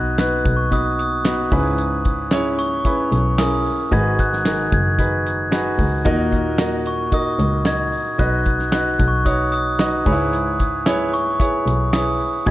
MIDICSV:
0, 0, Header, 1, 5, 480
1, 0, Start_track
1, 0, Tempo, 533808
1, 1606, Time_signature, 4, 2, 24, 8
1, 11245, End_track
2, 0, Start_track
2, 0, Title_t, "Glockenspiel"
2, 0, Program_c, 0, 9
2, 0, Note_on_c, 0, 90, 99
2, 172, Note_off_c, 0, 90, 0
2, 183, Note_on_c, 0, 90, 79
2, 504, Note_off_c, 0, 90, 0
2, 509, Note_on_c, 0, 85, 68
2, 656, Note_on_c, 0, 87, 84
2, 662, Note_off_c, 0, 85, 0
2, 885, Note_off_c, 0, 87, 0
2, 896, Note_on_c, 0, 87, 72
2, 1338, Note_off_c, 0, 87, 0
2, 2326, Note_on_c, 0, 85, 76
2, 3049, Note_on_c, 0, 87, 82
2, 3068, Note_off_c, 0, 85, 0
2, 3532, Note_on_c, 0, 92, 98
2, 3542, Note_off_c, 0, 87, 0
2, 3776, Note_on_c, 0, 90, 91
2, 3777, Note_off_c, 0, 92, 0
2, 4259, Note_on_c, 0, 92, 75
2, 4266, Note_off_c, 0, 90, 0
2, 5178, Note_off_c, 0, 92, 0
2, 6178, Note_on_c, 0, 85, 69
2, 6419, Note_on_c, 0, 87, 73
2, 6420, Note_off_c, 0, 85, 0
2, 6860, Note_off_c, 0, 87, 0
2, 6892, Note_on_c, 0, 92, 88
2, 7368, Note_on_c, 0, 90, 90
2, 7384, Note_off_c, 0, 92, 0
2, 7836, Note_off_c, 0, 90, 0
2, 7847, Note_on_c, 0, 90, 91
2, 8163, Note_on_c, 0, 85, 71
2, 8177, Note_off_c, 0, 90, 0
2, 8325, Note_on_c, 0, 87, 82
2, 8330, Note_off_c, 0, 85, 0
2, 8550, Note_off_c, 0, 87, 0
2, 8561, Note_on_c, 0, 87, 75
2, 9011, Note_off_c, 0, 87, 0
2, 10012, Note_on_c, 0, 85, 74
2, 10730, Note_on_c, 0, 87, 81
2, 10752, Note_off_c, 0, 85, 0
2, 11176, Note_off_c, 0, 87, 0
2, 11213, Note_on_c, 0, 92, 93
2, 11245, Note_off_c, 0, 92, 0
2, 11245, End_track
3, 0, Start_track
3, 0, Title_t, "Grand piano"
3, 0, Program_c, 1, 0
3, 0, Control_c, 1, 64, 127
3, 0, Note_on_c, 1, 59, 75
3, 0, Note_on_c, 1, 63, 76
3, 0, Note_on_c, 1, 66, 82
3, 0, Note_on_c, 1, 71, 90
3, 91, Note_off_c, 1, 66, 0
3, 93, Note_off_c, 1, 71, 0
3, 165, Note_off_c, 1, 59, 0
3, 165, Note_on_c, 1, 59, 68
3, 169, Note_off_c, 1, 63, 0
3, 169, Note_on_c, 1, 63, 59
3, 172, Note_on_c, 1, 66, 57
3, 176, Note_on_c, 1, 71, 74
3, 568, Note_off_c, 1, 59, 0
3, 570, Note_off_c, 1, 63, 0
3, 572, Note_off_c, 1, 66, 0
3, 574, Note_off_c, 1, 71, 0
3, 634, Note_on_c, 1, 59, 63
3, 638, Note_on_c, 1, 63, 60
3, 645, Note_on_c, 1, 66, 56
3, 650, Note_on_c, 1, 71, 68
3, 1043, Note_off_c, 1, 59, 0
3, 1045, Note_off_c, 1, 63, 0
3, 1048, Note_off_c, 1, 66, 0
3, 1050, Note_off_c, 1, 71, 0
3, 1119, Note_on_c, 1, 59, 71
3, 1124, Note_on_c, 1, 63, 58
3, 1130, Note_on_c, 1, 66, 60
3, 1131, Note_on_c, 1, 71, 70
3, 1358, Note_off_c, 1, 71, 0
3, 1358, Note_on_c, 1, 61, 72
3, 1362, Note_on_c, 1, 64, 66
3, 1363, Note_off_c, 1, 59, 0
3, 1365, Note_off_c, 1, 63, 0
3, 1365, Note_on_c, 1, 44, 66
3, 1365, Note_on_c, 1, 68, 77
3, 1368, Note_off_c, 1, 66, 0
3, 1372, Note_on_c, 1, 71, 84
3, 1376, Control_c, 1, 64, 0
3, 1553, Control_c, 1, 64, 127
3, 1966, Note_off_c, 1, 61, 0
3, 1968, Note_off_c, 1, 64, 0
3, 1970, Note_off_c, 1, 68, 0
3, 1973, Note_off_c, 1, 71, 0
3, 2050, Note_off_c, 1, 44, 0
3, 2079, Note_on_c, 1, 61, 74
3, 2082, Note_on_c, 1, 64, 71
3, 2085, Note_on_c, 1, 68, 74
3, 2090, Note_on_c, 1, 73, 96
3, 2485, Note_off_c, 1, 61, 0
3, 2487, Note_off_c, 1, 64, 0
3, 2488, Note_off_c, 1, 68, 0
3, 2491, Note_off_c, 1, 73, 0
3, 2559, Note_on_c, 1, 61, 61
3, 2565, Note_on_c, 1, 64, 57
3, 2567, Note_on_c, 1, 68, 53
3, 2571, Note_on_c, 1, 71, 70
3, 2965, Note_off_c, 1, 61, 0
3, 2968, Note_off_c, 1, 64, 0
3, 2969, Note_off_c, 1, 68, 0
3, 2971, Note_off_c, 1, 71, 0
3, 3038, Note_on_c, 1, 61, 70
3, 3044, Note_on_c, 1, 64, 64
3, 3048, Note_on_c, 1, 68, 66
3, 3052, Note_on_c, 1, 70, 69
3, 3445, Note_off_c, 1, 61, 0
3, 3448, Note_off_c, 1, 64, 0
3, 3450, Note_off_c, 1, 68, 0
3, 3452, Note_off_c, 1, 70, 0
3, 3520, Note_on_c, 1, 63, 81
3, 3521, Note_on_c, 1, 66, 74
3, 3523, Note_on_c, 1, 44, 62
3, 3525, Note_on_c, 1, 51, 62
3, 3528, Note_on_c, 1, 68, 77
3, 3531, Note_on_c, 1, 71, 84
3, 3540, Control_c, 1, 64, 0
3, 3716, Control_c, 1, 64, 127
3, 3926, Note_off_c, 1, 63, 0
3, 3927, Note_off_c, 1, 66, 0
3, 3930, Note_off_c, 1, 68, 0
3, 3932, Note_off_c, 1, 71, 0
3, 3998, Note_on_c, 1, 63, 58
3, 4002, Note_on_c, 1, 66, 57
3, 4006, Note_on_c, 1, 68, 63
3, 4011, Note_on_c, 1, 70, 75
3, 4209, Note_off_c, 1, 44, 0
3, 4210, Note_off_c, 1, 51, 0
3, 4405, Note_off_c, 1, 63, 0
3, 4407, Note_off_c, 1, 66, 0
3, 4409, Note_off_c, 1, 68, 0
3, 4412, Note_off_c, 1, 70, 0
3, 4479, Note_on_c, 1, 63, 54
3, 4483, Note_on_c, 1, 66, 53
3, 4490, Note_on_c, 1, 68, 51
3, 4492, Note_on_c, 1, 71, 67
3, 4886, Note_off_c, 1, 63, 0
3, 4888, Note_off_c, 1, 66, 0
3, 4891, Note_off_c, 1, 68, 0
3, 4892, Note_off_c, 1, 71, 0
3, 4956, Note_on_c, 1, 63, 74
3, 4960, Note_on_c, 1, 66, 74
3, 4966, Note_on_c, 1, 68, 64
3, 4970, Note_on_c, 1, 71, 78
3, 5364, Note_off_c, 1, 63, 0
3, 5366, Note_off_c, 1, 66, 0
3, 5369, Note_off_c, 1, 68, 0
3, 5371, Note_off_c, 1, 71, 0
3, 5437, Note_on_c, 1, 63, 97
3, 5442, Note_on_c, 1, 66, 84
3, 5445, Note_on_c, 1, 46, 73
3, 5448, Note_on_c, 1, 70, 83
3, 5452, Note_on_c, 1, 75, 103
3, 5459, Control_c, 1, 64, 0
3, 5614, Control_c, 1, 64, 127
3, 5845, Note_off_c, 1, 63, 0
3, 5847, Note_off_c, 1, 66, 0
3, 5850, Note_off_c, 1, 70, 0
3, 5852, Note_off_c, 1, 75, 0
3, 5920, Note_on_c, 1, 63, 74
3, 5924, Note_on_c, 1, 66, 74
3, 5930, Note_on_c, 1, 70, 69
3, 5932, Note_on_c, 1, 75, 89
3, 6131, Note_off_c, 1, 46, 0
3, 6326, Note_off_c, 1, 63, 0
3, 6328, Note_off_c, 1, 66, 0
3, 6331, Note_off_c, 1, 70, 0
3, 6332, Note_off_c, 1, 75, 0
3, 6397, Note_on_c, 1, 63, 61
3, 6401, Note_on_c, 1, 66, 61
3, 6407, Note_on_c, 1, 70, 58
3, 6409, Note_on_c, 1, 75, 72
3, 6805, Note_off_c, 1, 63, 0
3, 6807, Note_off_c, 1, 66, 0
3, 6810, Note_off_c, 1, 70, 0
3, 6811, Note_off_c, 1, 75, 0
3, 6880, Note_on_c, 1, 63, 59
3, 6884, Note_on_c, 1, 66, 60
3, 6888, Note_on_c, 1, 70, 58
3, 6891, Note_on_c, 1, 75, 67
3, 7287, Note_off_c, 1, 63, 0
3, 7289, Note_off_c, 1, 66, 0
3, 7291, Note_off_c, 1, 70, 0
3, 7292, Note_off_c, 1, 75, 0
3, 7357, Note_on_c, 1, 63, 81
3, 7362, Note_on_c, 1, 66, 72
3, 7365, Note_on_c, 1, 71, 74
3, 7369, Note_on_c, 1, 75, 96
3, 7380, Control_c, 1, 64, 0
3, 7562, Control_c, 1, 64, 127
3, 7765, Note_off_c, 1, 63, 0
3, 7768, Note_off_c, 1, 66, 0
3, 7769, Note_off_c, 1, 71, 0
3, 7771, Note_off_c, 1, 75, 0
3, 7838, Note_on_c, 1, 63, 65
3, 7841, Note_on_c, 1, 66, 64
3, 7845, Note_on_c, 1, 71, 59
3, 7850, Note_on_c, 1, 75, 74
3, 8246, Note_off_c, 1, 63, 0
3, 8247, Note_off_c, 1, 66, 0
3, 8249, Note_off_c, 1, 71, 0
3, 8252, Note_off_c, 1, 75, 0
3, 8316, Note_on_c, 1, 63, 65
3, 8320, Note_on_c, 1, 66, 63
3, 8324, Note_on_c, 1, 71, 50
3, 8328, Note_on_c, 1, 73, 73
3, 8725, Note_off_c, 1, 63, 0
3, 8727, Note_off_c, 1, 66, 0
3, 8729, Note_off_c, 1, 71, 0
3, 8731, Note_off_c, 1, 73, 0
3, 8797, Note_on_c, 1, 63, 70
3, 8805, Note_on_c, 1, 66, 66
3, 8806, Note_on_c, 1, 71, 59
3, 8811, Note_on_c, 1, 75, 74
3, 9027, Note_off_c, 1, 63, 0
3, 9036, Note_off_c, 1, 71, 0
3, 9040, Note_on_c, 1, 63, 62
3, 9044, Note_on_c, 1, 68, 73
3, 9046, Note_on_c, 1, 44, 63
3, 9047, Note_off_c, 1, 66, 0
3, 9049, Note_on_c, 1, 71, 70
3, 9050, Note_off_c, 1, 75, 0
3, 9053, Note_on_c, 1, 73, 81
3, 9061, Control_c, 1, 64, 0
3, 9097, Note_on_c, 1, 64, 81
3, 9102, Note_off_c, 1, 63, 0
3, 9220, Control_c, 1, 64, 127
3, 9650, Note_off_c, 1, 68, 0
3, 9653, Note_off_c, 1, 71, 0
3, 9655, Note_off_c, 1, 73, 0
3, 9677, Note_off_c, 1, 64, 0
3, 9731, Note_off_c, 1, 44, 0
3, 9763, Note_on_c, 1, 64, 84
3, 9767, Note_on_c, 1, 68, 70
3, 9770, Note_on_c, 1, 71, 70
3, 9775, Note_on_c, 1, 73, 94
3, 10168, Note_off_c, 1, 64, 0
3, 10170, Note_off_c, 1, 68, 0
3, 10172, Note_off_c, 1, 71, 0
3, 10174, Note_off_c, 1, 73, 0
3, 10244, Note_on_c, 1, 64, 58
3, 10246, Note_on_c, 1, 68, 64
3, 10251, Note_on_c, 1, 71, 59
3, 10257, Note_on_c, 1, 73, 73
3, 10649, Note_off_c, 1, 64, 0
3, 10650, Note_off_c, 1, 68, 0
3, 10653, Note_off_c, 1, 71, 0
3, 10655, Note_off_c, 1, 73, 0
3, 10728, Note_on_c, 1, 64, 66
3, 10734, Note_on_c, 1, 68, 61
3, 10736, Note_on_c, 1, 71, 64
3, 10740, Note_on_c, 1, 73, 70
3, 11131, Note_off_c, 1, 64, 0
3, 11134, Note_off_c, 1, 68, 0
3, 11135, Note_off_c, 1, 71, 0
3, 11137, Note_off_c, 1, 73, 0
3, 11205, Note_on_c, 1, 66, 77
3, 11210, Note_on_c, 1, 68, 84
3, 11212, Note_on_c, 1, 51, 55
3, 11214, Note_on_c, 1, 44, 57
3, 11215, Note_on_c, 1, 71, 73
3, 11220, Control_c, 1, 64, 0
3, 11245, Note_off_c, 1, 44, 0
3, 11245, Note_off_c, 1, 51, 0
3, 11245, Note_off_c, 1, 66, 0
3, 11245, Note_off_c, 1, 68, 0
3, 11245, Note_off_c, 1, 71, 0
3, 11245, End_track
4, 0, Start_track
4, 0, Title_t, "Double bass"
4, 0, Program_c, 2, 43
4, 0, Note_on_c, 2, 35, 100
4, 372, Note_off_c, 2, 35, 0
4, 407, Note_on_c, 2, 35, 89
4, 1331, Note_off_c, 2, 35, 0
4, 1366, Note_on_c, 2, 37, 84
4, 2770, Note_off_c, 2, 37, 0
4, 2802, Note_on_c, 2, 35, 87
4, 3251, Note_off_c, 2, 35, 0
4, 3525, Note_on_c, 2, 32, 98
4, 4210, Note_off_c, 2, 32, 0
4, 4247, Note_on_c, 2, 30, 81
4, 5171, Note_off_c, 2, 30, 0
4, 5202, Note_on_c, 2, 37, 82
4, 5428, Note_off_c, 2, 37, 0
4, 5447, Note_on_c, 2, 39, 92
4, 6611, Note_off_c, 2, 39, 0
4, 6644, Note_on_c, 2, 37, 84
4, 7093, Note_off_c, 2, 37, 0
4, 7366, Note_on_c, 2, 35, 88
4, 8052, Note_off_c, 2, 35, 0
4, 8086, Note_on_c, 2, 35, 88
4, 9012, Note_off_c, 2, 35, 0
4, 9045, Note_on_c, 2, 37, 79
4, 10451, Note_off_c, 2, 37, 0
4, 10487, Note_on_c, 2, 35, 83
4, 10934, Note_off_c, 2, 35, 0
4, 11208, Note_on_c, 2, 32, 101
4, 11245, Note_off_c, 2, 32, 0
4, 11245, End_track
5, 0, Start_track
5, 0, Title_t, "Drums"
5, 166, Note_on_c, 9, 42, 59
5, 167, Note_on_c, 9, 38, 100
5, 170, Note_on_c, 9, 39, 74
5, 256, Note_off_c, 9, 38, 0
5, 256, Note_off_c, 9, 42, 0
5, 260, Note_off_c, 9, 39, 0
5, 408, Note_on_c, 9, 42, 71
5, 409, Note_on_c, 9, 36, 90
5, 498, Note_off_c, 9, 42, 0
5, 499, Note_off_c, 9, 36, 0
5, 647, Note_on_c, 9, 36, 73
5, 650, Note_on_c, 9, 42, 85
5, 737, Note_off_c, 9, 36, 0
5, 740, Note_off_c, 9, 42, 0
5, 891, Note_on_c, 9, 42, 71
5, 981, Note_off_c, 9, 42, 0
5, 1125, Note_on_c, 9, 38, 98
5, 1128, Note_on_c, 9, 39, 74
5, 1129, Note_on_c, 9, 42, 80
5, 1215, Note_off_c, 9, 38, 0
5, 1218, Note_off_c, 9, 39, 0
5, 1219, Note_off_c, 9, 42, 0
5, 1362, Note_on_c, 9, 46, 61
5, 1366, Note_on_c, 9, 36, 89
5, 1451, Note_off_c, 9, 46, 0
5, 1455, Note_off_c, 9, 36, 0
5, 1602, Note_on_c, 9, 42, 70
5, 1692, Note_off_c, 9, 42, 0
5, 1842, Note_on_c, 9, 42, 67
5, 1848, Note_on_c, 9, 36, 78
5, 1932, Note_off_c, 9, 42, 0
5, 1938, Note_off_c, 9, 36, 0
5, 2080, Note_on_c, 9, 38, 94
5, 2080, Note_on_c, 9, 42, 57
5, 2084, Note_on_c, 9, 39, 81
5, 2170, Note_off_c, 9, 38, 0
5, 2170, Note_off_c, 9, 42, 0
5, 2174, Note_off_c, 9, 39, 0
5, 2326, Note_on_c, 9, 42, 77
5, 2416, Note_off_c, 9, 42, 0
5, 2562, Note_on_c, 9, 36, 68
5, 2562, Note_on_c, 9, 42, 90
5, 2652, Note_off_c, 9, 36, 0
5, 2652, Note_off_c, 9, 42, 0
5, 2807, Note_on_c, 9, 42, 78
5, 2897, Note_off_c, 9, 42, 0
5, 3043, Note_on_c, 9, 38, 102
5, 3047, Note_on_c, 9, 39, 75
5, 3047, Note_on_c, 9, 42, 74
5, 3133, Note_off_c, 9, 38, 0
5, 3137, Note_off_c, 9, 39, 0
5, 3137, Note_off_c, 9, 42, 0
5, 3284, Note_on_c, 9, 46, 68
5, 3374, Note_off_c, 9, 46, 0
5, 3525, Note_on_c, 9, 42, 67
5, 3527, Note_on_c, 9, 36, 87
5, 3615, Note_off_c, 9, 42, 0
5, 3617, Note_off_c, 9, 36, 0
5, 3766, Note_on_c, 9, 42, 73
5, 3770, Note_on_c, 9, 36, 70
5, 3856, Note_off_c, 9, 42, 0
5, 3860, Note_off_c, 9, 36, 0
5, 3895, Note_on_c, 9, 38, 31
5, 3984, Note_off_c, 9, 38, 0
5, 4006, Note_on_c, 9, 38, 99
5, 4006, Note_on_c, 9, 42, 65
5, 4010, Note_on_c, 9, 39, 78
5, 4096, Note_off_c, 9, 38, 0
5, 4096, Note_off_c, 9, 42, 0
5, 4099, Note_off_c, 9, 39, 0
5, 4248, Note_on_c, 9, 36, 90
5, 4248, Note_on_c, 9, 42, 71
5, 4338, Note_off_c, 9, 36, 0
5, 4338, Note_off_c, 9, 42, 0
5, 4485, Note_on_c, 9, 36, 75
5, 4489, Note_on_c, 9, 42, 88
5, 4575, Note_off_c, 9, 36, 0
5, 4579, Note_off_c, 9, 42, 0
5, 4734, Note_on_c, 9, 42, 74
5, 4824, Note_off_c, 9, 42, 0
5, 4967, Note_on_c, 9, 38, 98
5, 4970, Note_on_c, 9, 39, 84
5, 4970, Note_on_c, 9, 42, 79
5, 5057, Note_off_c, 9, 38, 0
5, 5060, Note_off_c, 9, 39, 0
5, 5060, Note_off_c, 9, 42, 0
5, 5205, Note_on_c, 9, 36, 75
5, 5205, Note_on_c, 9, 46, 64
5, 5295, Note_off_c, 9, 36, 0
5, 5295, Note_off_c, 9, 46, 0
5, 5447, Note_on_c, 9, 36, 104
5, 5448, Note_on_c, 9, 42, 58
5, 5537, Note_off_c, 9, 36, 0
5, 5538, Note_off_c, 9, 42, 0
5, 5684, Note_on_c, 9, 42, 76
5, 5688, Note_on_c, 9, 36, 65
5, 5774, Note_off_c, 9, 42, 0
5, 5778, Note_off_c, 9, 36, 0
5, 5921, Note_on_c, 9, 38, 105
5, 5921, Note_on_c, 9, 42, 63
5, 5924, Note_on_c, 9, 39, 74
5, 6011, Note_off_c, 9, 38, 0
5, 6011, Note_off_c, 9, 42, 0
5, 6014, Note_off_c, 9, 39, 0
5, 6167, Note_on_c, 9, 42, 69
5, 6256, Note_off_c, 9, 42, 0
5, 6404, Note_on_c, 9, 36, 77
5, 6407, Note_on_c, 9, 42, 89
5, 6494, Note_off_c, 9, 36, 0
5, 6497, Note_off_c, 9, 42, 0
5, 6649, Note_on_c, 9, 42, 75
5, 6739, Note_off_c, 9, 42, 0
5, 6883, Note_on_c, 9, 38, 97
5, 6886, Note_on_c, 9, 39, 83
5, 6886, Note_on_c, 9, 42, 75
5, 6973, Note_off_c, 9, 38, 0
5, 6976, Note_off_c, 9, 39, 0
5, 6976, Note_off_c, 9, 42, 0
5, 7124, Note_on_c, 9, 46, 65
5, 7214, Note_off_c, 9, 46, 0
5, 7367, Note_on_c, 9, 36, 97
5, 7367, Note_on_c, 9, 42, 63
5, 7457, Note_off_c, 9, 36, 0
5, 7457, Note_off_c, 9, 42, 0
5, 7604, Note_on_c, 9, 42, 68
5, 7609, Note_on_c, 9, 36, 81
5, 7693, Note_off_c, 9, 42, 0
5, 7699, Note_off_c, 9, 36, 0
5, 7728, Note_on_c, 9, 38, 29
5, 7818, Note_off_c, 9, 38, 0
5, 7843, Note_on_c, 9, 38, 94
5, 7843, Note_on_c, 9, 42, 67
5, 7847, Note_on_c, 9, 39, 74
5, 7933, Note_off_c, 9, 38, 0
5, 7933, Note_off_c, 9, 42, 0
5, 7937, Note_off_c, 9, 39, 0
5, 8088, Note_on_c, 9, 36, 94
5, 8089, Note_on_c, 9, 42, 69
5, 8178, Note_off_c, 9, 36, 0
5, 8179, Note_off_c, 9, 42, 0
5, 8326, Note_on_c, 9, 36, 75
5, 8330, Note_on_c, 9, 42, 96
5, 8416, Note_off_c, 9, 36, 0
5, 8420, Note_off_c, 9, 42, 0
5, 8572, Note_on_c, 9, 42, 75
5, 8662, Note_off_c, 9, 42, 0
5, 8807, Note_on_c, 9, 38, 93
5, 8810, Note_on_c, 9, 39, 75
5, 8810, Note_on_c, 9, 42, 72
5, 8897, Note_off_c, 9, 38, 0
5, 8900, Note_off_c, 9, 39, 0
5, 8900, Note_off_c, 9, 42, 0
5, 9048, Note_on_c, 9, 36, 85
5, 9049, Note_on_c, 9, 46, 55
5, 9138, Note_off_c, 9, 36, 0
5, 9139, Note_off_c, 9, 46, 0
5, 9290, Note_on_c, 9, 42, 61
5, 9380, Note_off_c, 9, 42, 0
5, 9529, Note_on_c, 9, 42, 74
5, 9532, Note_on_c, 9, 36, 68
5, 9619, Note_off_c, 9, 42, 0
5, 9622, Note_off_c, 9, 36, 0
5, 9768, Note_on_c, 9, 38, 96
5, 9768, Note_on_c, 9, 42, 64
5, 9771, Note_on_c, 9, 39, 75
5, 9858, Note_off_c, 9, 38, 0
5, 9858, Note_off_c, 9, 42, 0
5, 9861, Note_off_c, 9, 39, 0
5, 10014, Note_on_c, 9, 42, 69
5, 10104, Note_off_c, 9, 42, 0
5, 10249, Note_on_c, 9, 36, 81
5, 10258, Note_on_c, 9, 42, 91
5, 10339, Note_off_c, 9, 36, 0
5, 10348, Note_off_c, 9, 42, 0
5, 10498, Note_on_c, 9, 42, 82
5, 10588, Note_off_c, 9, 42, 0
5, 10730, Note_on_c, 9, 38, 91
5, 10733, Note_on_c, 9, 39, 81
5, 10733, Note_on_c, 9, 42, 81
5, 10820, Note_off_c, 9, 38, 0
5, 10823, Note_off_c, 9, 39, 0
5, 10823, Note_off_c, 9, 42, 0
5, 10971, Note_on_c, 9, 46, 65
5, 11061, Note_off_c, 9, 46, 0
5, 11209, Note_on_c, 9, 42, 67
5, 11211, Note_on_c, 9, 36, 88
5, 11245, Note_off_c, 9, 36, 0
5, 11245, Note_off_c, 9, 42, 0
5, 11245, End_track
0, 0, End_of_file